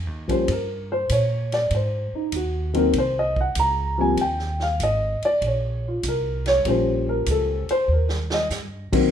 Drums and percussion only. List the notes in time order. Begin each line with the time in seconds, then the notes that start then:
0.29 kick, ride
0.48 kick, ride
1.09 kick, hi-hat pedal, ride
1.52 snare, ride
1.70 kick, ride
2.32 kick, hi-hat pedal, ride
2.74 ride
2.93 kick, ride
3.36 kick
3.55 kick, hi-hat pedal, ride
4.17 kick, ride
4.39 snare
4.60 snare
4.80 kick, hi-hat pedal, ride
5.22 ride
5.42 kick, ride
6.03 kick, hi-hat pedal, ride
6.46 snare, ride
6.65 kick, ride
7.26 kick, hi-hat pedal, ride
7.69 ride
8.09 snare
8.30 snare
8.50 snare, hi-hat pedal
8.93 kick, crash